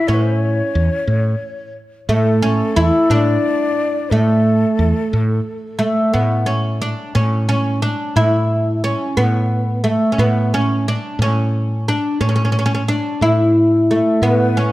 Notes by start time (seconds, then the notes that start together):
0.07 A2 C#4 C#5
0.14 B4
0.22 C5
0.35 C#5
0.75 E2
1.07 A2
2.09 A2 A3 A4
2.42 C#4
2.76 E2 E4
3.10 A2 D4 D5
4.10 A2 A3 A4
4.79 E2
5.13 A2
5.79 A3
6.14 A2 B3
6.46 C#4
6.82 D4
7.15 A2 C#4
7.49 C#4
7.82 D4
8.16 A2 E4
8.84 C#4
9.17 A2 B3
9.84 A3
10.12 C#4
10.18 A2 B3
10.54 C#4
10.88 D4
11.19 A2 C#4
11.88 D4
12.20 A2 C#4
12.29 C#4
12.36 C#4
12.45 C#4
12.52 C#4
12.59 C#4
12.66 C#4
12.75 C#4
12.88 D4
13.21 A2 E4
13.91 A3
14.22 A2 B3 B4
14.57 C#4